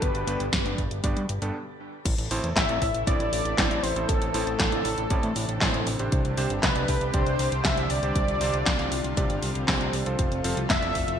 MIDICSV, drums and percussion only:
0, 0, Header, 1, 2, 480
1, 0, Start_track
1, 0, Key_signature, 0, "minor"
1, 0, Tempo, 508475
1, 20, Time_signature, 4, 2, 24, 8
1, 10567, End_track
2, 0, Start_track
2, 0, Title_t, "Drums"
2, 19, Note_on_c, 9, 36, 109
2, 20, Note_on_c, 9, 42, 92
2, 114, Note_off_c, 9, 36, 0
2, 114, Note_off_c, 9, 42, 0
2, 140, Note_on_c, 9, 42, 39
2, 234, Note_off_c, 9, 42, 0
2, 260, Note_on_c, 9, 42, 71
2, 354, Note_off_c, 9, 42, 0
2, 380, Note_on_c, 9, 42, 40
2, 474, Note_off_c, 9, 42, 0
2, 498, Note_on_c, 9, 38, 114
2, 498, Note_on_c, 9, 42, 93
2, 499, Note_on_c, 9, 36, 114
2, 593, Note_off_c, 9, 38, 0
2, 593, Note_off_c, 9, 42, 0
2, 594, Note_off_c, 9, 36, 0
2, 619, Note_on_c, 9, 42, 38
2, 714, Note_off_c, 9, 42, 0
2, 739, Note_on_c, 9, 36, 56
2, 740, Note_on_c, 9, 42, 37
2, 834, Note_off_c, 9, 36, 0
2, 834, Note_off_c, 9, 42, 0
2, 860, Note_on_c, 9, 42, 41
2, 955, Note_off_c, 9, 42, 0
2, 979, Note_on_c, 9, 36, 111
2, 979, Note_on_c, 9, 42, 94
2, 1074, Note_off_c, 9, 36, 0
2, 1074, Note_off_c, 9, 42, 0
2, 1101, Note_on_c, 9, 42, 42
2, 1195, Note_off_c, 9, 42, 0
2, 1219, Note_on_c, 9, 42, 69
2, 1314, Note_off_c, 9, 42, 0
2, 1340, Note_on_c, 9, 42, 42
2, 1434, Note_off_c, 9, 42, 0
2, 1940, Note_on_c, 9, 36, 111
2, 1940, Note_on_c, 9, 42, 100
2, 1940, Note_on_c, 9, 49, 107
2, 2034, Note_off_c, 9, 36, 0
2, 2035, Note_off_c, 9, 42, 0
2, 2035, Note_off_c, 9, 49, 0
2, 2062, Note_on_c, 9, 42, 43
2, 2156, Note_off_c, 9, 42, 0
2, 2180, Note_on_c, 9, 46, 105
2, 2274, Note_off_c, 9, 46, 0
2, 2302, Note_on_c, 9, 42, 41
2, 2396, Note_off_c, 9, 42, 0
2, 2420, Note_on_c, 9, 36, 121
2, 2422, Note_on_c, 9, 38, 119
2, 2422, Note_on_c, 9, 39, 91
2, 2422, Note_on_c, 9, 42, 95
2, 2514, Note_off_c, 9, 36, 0
2, 2516, Note_off_c, 9, 38, 0
2, 2516, Note_off_c, 9, 39, 0
2, 2516, Note_off_c, 9, 42, 0
2, 2540, Note_on_c, 9, 42, 42
2, 2635, Note_off_c, 9, 42, 0
2, 2660, Note_on_c, 9, 36, 62
2, 2660, Note_on_c, 9, 46, 104
2, 2754, Note_off_c, 9, 36, 0
2, 2754, Note_off_c, 9, 46, 0
2, 2780, Note_on_c, 9, 42, 44
2, 2874, Note_off_c, 9, 42, 0
2, 2900, Note_on_c, 9, 36, 120
2, 2901, Note_on_c, 9, 42, 95
2, 2995, Note_off_c, 9, 36, 0
2, 2996, Note_off_c, 9, 42, 0
2, 3022, Note_on_c, 9, 42, 40
2, 3116, Note_off_c, 9, 42, 0
2, 3142, Note_on_c, 9, 46, 112
2, 3236, Note_off_c, 9, 46, 0
2, 3261, Note_on_c, 9, 42, 44
2, 3355, Note_off_c, 9, 42, 0
2, 3380, Note_on_c, 9, 36, 118
2, 3382, Note_on_c, 9, 38, 120
2, 3382, Note_on_c, 9, 39, 97
2, 3382, Note_on_c, 9, 42, 98
2, 3474, Note_off_c, 9, 36, 0
2, 3477, Note_off_c, 9, 38, 0
2, 3477, Note_off_c, 9, 39, 0
2, 3477, Note_off_c, 9, 42, 0
2, 3502, Note_on_c, 9, 42, 44
2, 3596, Note_off_c, 9, 42, 0
2, 3621, Note_on_c, 9, 46, 106
2, 3716, Note_off_c, 9, 46, 0
2, 3741, Note_on_c, 9, 42, 42
2, 3836, Note_off_c, 9, 42, 0
2, 3860, Note_on_c, 9, 36, 126
2, 3860, Note_on_c, 9, 42, 93
2, 3954, Note_off_c, 9, 42, 0
2, 3955, Note_off_c, 9, 36, 0
2, 3980, Note_on_c, 9, 42, 42
2, 4075, Note_off_c, 9, 42, 0
2, 4100, Note_on_c, 9, 46, 101
2, 4194, Note_off_c, 9, 46, 0
2, 4220, Note_on_c, 9, 42, 39
2, 4315, Note_off_c, 9, 42, 0
2, 4338, Note_on_c, 9, 38, 124
2, 4338, Note_on_c, 9, 39, 90
2, 4338, Note_on_c, 9, 42, 90
2, 4340, Note_on_c, 9, 36, 124
2, 4433, Note_off_c, 9, 38, 0
2, 4433, Note_off_c, 9, 39, 0
2, 4433, Note_off_c, 9, 42, 0
2, 4434, Note_off_c, 9, 36, 0
2, 4459, Note_on_c, 9, 42, 40
2, 4553, Note_off_c, 9, 42, 0
2, 4578, Note_on_c, 9, 46, 103
2, 4673, Note_off_c, 9, 46, 0
2, 4698, Note_on_c, 9, 42, 43
2, 4793, Note_off_c, 9, 42, 0
2, 4818, Note_on_c, 9, 42, 92
2, 4820, Note_on_c, 9, 36, 121
2, 4912, Note_off_c, 9, 42, 0
2, 4914, Note_off_c, 9, 36, 0
2, 4939, Note_on_c, 9, 42, 40
2, 5033, Note_off_c, 9, 42, 0
2, 5059, Note_on_c, 9, 46, 102
2, 5153, Note_off_c, 9, 46, 0
2, 5180, Note_on_c, 9, 42, 40
2, 5274, Note_off_c, 9, 42, 0
2, 5299, Note_on_c, 9, 38, 127
2, 5299, Note_on_c, 9, 39, 98
2, 5299, Note_on_c, 9, 46, 60
2, 5300, Note_on_c, 9, 36, 126
2, 5393, Note_off_c, 9, 38, 0
2, 5393, Note_off_c, 9, 39, 0
2, 5393, Note_off_c, 9, 46, 0
2, 5395, Note_off_c, 9, 36, 0
2, 5420, Note_on_c, 9, 42, 41
2, 5514, Note_off_c, 9, 42, 0
2, 5539, Note_on_c, 9, 46, 105
2, 5634, Note_off_c, 9, 46, 0
2, 5658, Note_on_c, 9, 42, 43
2, 5752, Note_off_c, 9, 42, 0
2, 5779, Note_on_c, 9, 42, 90
2, 5780, Note_on_c, 9, 36, 127
2, 5873, Note_off_c, 9, 42, 0
2, 5874, Note_off_c, 9, 36, 0
2, 5899, Note_on_c, 9, 42, 41
2, 5993, Note_off_c, 9, 42, 0
2, 6018, Note_on_c, 9, 46, 108
2, 6112, Note_off_c, 9, 46, 0
2, 6138, Note_on_c, 9, 42, 41
2, 6232, Note_off_c, 9, 42, 0
2, 6259, Note_on_c, 9, 38, 121
2, 6259, Note_on_c, 9, 39, 92
2, 6259, Note_on_c, 9, 42, 88
2, 6260, Note_on_c, 9, 36, 126
2, 6354, Note_off_c, 9, 36, 0
2, 6354, Note_off_c, 9, 38, 0
2, 6354, Note_off_c, 9, 39, 0
2, 6354, Note_off_c, 9, 42, 0
2, 6378, Note_on_c, 9, 42, 39
2, 6472, Note_off_c, 9, 42, 0
2, 6498, Note_on_c, 9, 46, 103
2, 6500, Note_on_c, 9, 36, 64
2, 6593, Note_off_c, 9, 46, 0
2, 6594, Note_off_c, 9, 36, 0
2, 6619, Note_on_c, 9, 42, 39
2, 6713, Note_off_c, 9, 42, 0
2, 6737, Note_on_c, 9, 42, 92
2, 6740, Note_on_c, 9, 36, 125
2, 6831, Note_off_c, 9, 42, 0
2, 6834, Note_off_c, 9, 36, 0
2, 6858, Note_on_c, 9, 42, 38
2, 6952, Note_off_c, 9, 42, 0
2, 6979, Note_on_c, 9, 46, 102
2, 7073, Note_off_c, 9, 46, 0
2, 7100, Note_on_c, 9, 42, 41
2, 7194, Note_off_c, 9, 42, 0
2, 7218, Note_on_c, 9, 38, 127
2, 7218, Note_on_c, 9, 39, 98
2, 7218, Note_on_c, 9, 42, 93
2, 7220, Note_on_c, 9, 36, 127
2, 7312, Note_off_c, 9, 38, 0
2, 7312, Note_off_c, 9, 39, 0
2, 7312, Note_off_c, 9, 42, 0
2, 7314, Note_off_c, 9, 36, 0
2, 7339, Note_on_c, 9, 42, 41
2, 7434, Note_off_c, 9, 42, 0
2, 7457, Note_on_c, 9, 46, 99
2, 7552, Note_off_c, 9, 46, 0
2, 7579, Note_on_c, 9, 42, 41
2, 7673, Note_off_c, 9, 42, 0
2, 7699, Note_on_c, 9, 42, 88
2, 7700, Note_on_c, 9, 36, 123
2, 7793, Note_off_c, 9, 42, 0
2, 7794, Note_off_c, 9, 36, 0
2, 7820, Note_on_c, 9, 42, 38
2, 7914, Note_off_c, 9, 42, 0
2, 7938, Note_on_c, 9, 46, 104
2, 8032, Note_off_c, 9, 46, 0
2, 8058, Note_on_c, 9, 42, 37
2, 8153, Note_off_c, 9, 42, 0
2, 8179, Note_on_c, 9, 38, 127
2, 8179, Note_on_c, 9, 39, 89
2, 8179, Note_on_c, 9, 42, 87
2, 8180, Note_on_c, 9, 36, 127
2, 8273, Note_off_c, 9, 38, 0
2, 8273, Note_off_c, 9, 39, 0
2, 8273, Note_off_c, 9, 42, 0
2, 8274, Note_off_c, 9, 36, 0
2, 8298, Note_on_c, 9, 38, 36
2, 8298, Note_on_c, 9, 42, 38
2, 8392, Note_off_c, 9, 38, 0
2, 8392, Note_off_c, 9, 42, 0
2, 8418, Note_on_c, 9, 46, 107
2, 8512, Note_off_c, 9, 46, 0
2, 8538, Note_on_c, 9, 42, 39
2, 8632, Note_off_c, 9, 42, 0
2, 8659, Note_on_c, 9, 36, 126
2, 8659, Note_on_c, 9, 42, 88
2, 8753, Note_off_c, 9, 42, 0
2, 8754, Note_off_c, 9, 36, 0
2, 8778, Note_on_c, 9, 42, 38
2, 8872, Note_off_c, 9, 42, 0
2, 8897, Note_on_c, 9, 46, 106
2, 8992, Note_off_c, 9, 46, 0
2, 9018, Note_on_c, 9, 42, 40
2, 9113, Note_off_c, 9, 42, 0
2, 9138, Note_on_c, 9, 38, 127
2, 9138, Note_on_c, 9, 39, 88
2, 9138, Note_on_c, 9, 46, 61
2, 9139, Note_on_c, 9, 36, 120
2, 9233, Note_off_c, 9, 38, 0
2, 9233, Note_off_c, 9, 39, 0
2, 9233, Note_off_c, 9, 46, 0
2, 9234, Note_off_c, 9, 36, 0
2, 9259, Note_on_c, 9, 42, 38
2, 9353, Note_off_c, 9, 42, 0
2, 9378, Note_on_c, 9, 46, 99
2, 9472, Note_off_c, 9, 46, 0
2, 9499, Note_on_c, 9, 42, 38
2, 9593, Note_off_c, 9, 42, 0
2, 9618, Note_on_c, 9, 42, 89
2, 9619, Note_on_c, 9, 36, 117
2, 9712, Note_off_c, 9, 42, 0
2, 9713, Note_off_c, 9, 36, 0
2, 9739, Note_on_c, 9, 42, 39
2, 9834, Note_off_c, 9, 42, 0
2, 9859, Note_on_c, 9, 46, 110
2, 9953, Note_off_c, 9, 46, 0
2, 9980, Note_on_c, 9, 42, 38
2, 10074, Note_off_c, 9, 42, 0
2, 10099, Note_on_c, 9, 36, 124
2, 10100, Note_on_c, 9, 38, 116
2, 10100, Note_on_c, 9, 39, 85
2, 10100, Note_on_c, 9, 42, 92
2, 10193, Note_off_c, 9, 36, 0
2, 10194, Note_off_c, 9, 38, 0
2, 10194, Note_off_c, 9, 39, 0
2, 10194, Note_off_c, 9, 42, 0
2, 10219, Note_on_c, 9, 42, 36
2, 10313, Note_off_c, 9, 42, 0
2, 10339, Note_on_c, 9, 36, 65
2, 10339, Note_on_c, 9, 46, 103
2, 10433, Note_off_c, 9, 36, 0
2, 10433, Note_off_c, 9, 46, 0
2, 10460, Note_on_c, 9, 42, 41
2, 10554, Note_off_c, 9, 42, 0
2, 10567, End_track
0, 0, End_of_file